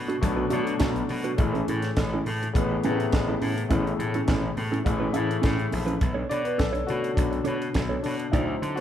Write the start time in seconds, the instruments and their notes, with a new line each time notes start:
Already playing: slap bass B2, grand piano B2 F#3 A3 D4
0.08 clean electric guitar D4 F#4 A4, closed hi-hat
0.21 slap bass B1, grand piano B2 F#3 A3 D4, kick, closed hi-hat
0.36 clean electric guitar D4 F#4 B4
0.50 grand piano B2 F#3 A3 D4, slap bass B2, clean electric guitar D4 F#4 A4, closed hi-hat
0.67 closed hi-hat
0.79 slap bass B1, clean electric guitar D4 F#4 A4, kick, snare, closed hi-hat
0.95 muted clean electric guitar stroke, closed hi-hat
1.08 slap bass B2, muted clean electric guitar stroke, open hi-hat
1.24 clean electric guitar D4 F#4 B4, closed hi-hat
1.37 slap bass A1, grand piano C#3 E3 A3 E4, kick, closed hi-hat
1.54 clean electric guitar C#4 E4 A4, closed hi-hat
1.68 slap bass A2, clean electric guitar C#4 E4 A4, closed hi-hat
1.82 snare, closed hi-hat
1.97 slap bass A1, muted clean electric guitar stroke, kick, snare, closed hi-hat
2.14 clean electric guitar C#4 E4 A4
2.26 slap bass A2, muted clean electric guitar stroke, open hi-hat
2.43 muted clean electric guitar stroke, closed hi-hat
2.53 slap bass A1, grand piano C#3 E3 A3 B3, kick, closed hi-hat
2.72 muted clean electric guitar stroke
2.84 slap bass A2, grand piano C3 E3 A3 B3, clean electric guitar C#4 E4 A4, closed hi-hat
2.90 grand piano C#3
3.00 muted clean electric guitar stroke, closed hi-hat
3.13 slap bass A1, muted clean electric guitar stroke, kick, snare, closed hi-hat
3.29 clean electric guitar C#4 E4 A4
3.41 slap bass A2, clean electric guitar C#4 E4 A4, open hi-hat
3.58 closed hi-hat
3.69 slap bass A1, grand piano B2 E3 A3 E4, clean electric guitar C#4 E4 B4, kick, closed hi-hat
3.75 grand piano C#3
3.87 closed hi-hat
3.99 slap bass A2, muted clean electric guitar stroke, closed hi-hat
4.14 clean electric guitar C#4 E4 A4, closed hi-hat
4.28 slap bass A1, clean electric guitar C#4 E4 A4, kick, snare, closed hi-hat
4.43 muted clean electric guitar stroke
4.57 slap bass A2, muted clean electric guitar stroke, open hi-hat
4.72 clean electric guitar C#4 E4 A4, closed hi-hat
4.84 slap bass A1, grand piano C#3 E3 A3 E4, muted clean electric guitar stroke, kick, closed hi-hat
5.00 clean electric guitar C#4 E4 B4
5.12 slap bass A2, grand piano C#3 E3 A3 E4, clean electric guitar C#4 E4 A4, closed hi-hat
5.29 muted clean electric guitar stroke, closed hi-hat
5.42 slap bass A2, clean electric guitar C#4 E4 A4, kick, snare, closed hi-hat
5.58 muted clean electric guitar stroke, closed hi-hat
5.72 slap bass A#1, muted clean electric guitar stroke, open hi-hat
5.86 clean electric guitar C#4 E4 B4, closed hi-hat
6.00 slap bass B1, muted clean electric guitar stroke, kick, closed hi-hat
6.14 clean electric guitar D4 A4 C#5
6.29 slap bass B2, clean electric guitar D4 A4 C#5, grand piano D5, closed hi-hat
6.45 grand piano B4, muted clean electric guitar stroke, closed hi-hat
6.58 slap bass B1, grand piano A4, muted clean electric guitar stroke, kick, snare, closed hi-hat
6.73 clean electric guitar D4 A4 C#5, closed hi-hat
6.86 slap bass B2, grand piano D3 A3 C#4 F#4, muted clean electric guitar stroke, closed hi-hat
7.03 muted clean electric guitar stroke, closed hi-hat
7.15 slap bass B1, grand piano D4, kick, closed hi-hat
7.32 muted clean electric guitar stroke, closed hi-hat
7.44 slap bass B2, clean electric guitar D4 A4 C#5, closed hi-hat
7.60 muted clean electric guitar stroke, closed hi-hat
7.73 slap bass B1, muted clean electric guitar stroke, kick, snare, closed hi-hat
7.89 clean electric guitar D4 A4 C#5
8.02 slap bass B2, grand piano D4, clean electric guitar D4 A4 C#5, open hi-hat
8.20 muted clean electric guitar stroke, closed hi-hat
8.32 slap bass D2, grand piano F#3 C4 D#4 E4, clean electric guitar D#4 F#4 D5, kick, closed hi-hat
8.49 muted clean electric guitar stroke
8.62 slap bass D3, muted clean electric guitar stroke, closed hi-hat
8.75 grand piano F#4, closed hi-hat